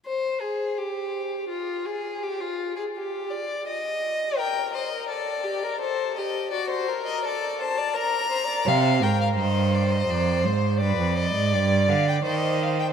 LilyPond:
<<
  \new Staff \with { instrumentName = "Violin" } { \time 3/4 \key c \minor \tempo 4 = 83 r2. | r2. | g''8 ees''8 d''4 c''8 ees''8 | d''16 c''8 ees''16 d''8 a''8 bes''4 |
f''8 g''16 f''16 ees''8 d''16 ees''16 d''8 c''8 | b'8 ees''8 d''8 f''16 g''16 ees''8 f''16 g''16 | }
  \new Staff \with { instrumentName = "Violin" } { \time 3/4 \key c \minor c''8 aes'8 g'4 f'8 aes'8 | g'16 f'8 aes'16 g'8 d''8 ees''4 | bes'8 c''16 bes'16 a'8 g'16 bes'16 a'8 g'8 | fis'8 bes'8 a'8 c''16 d''16 bes'8 c''16 d''16 |
c''8 bes'8 c''2 | d''2 c''4 | }
  \new Staff \with { instrumentName = "Cello" } { \clef bass \time 3/4 \key c \minor r2. | r2. | r2. | r2. |
c8 aes,8 g,4 f,8 aes,8 | g,16 f,8 aes,16 g,8 d8 ees4 | }
>>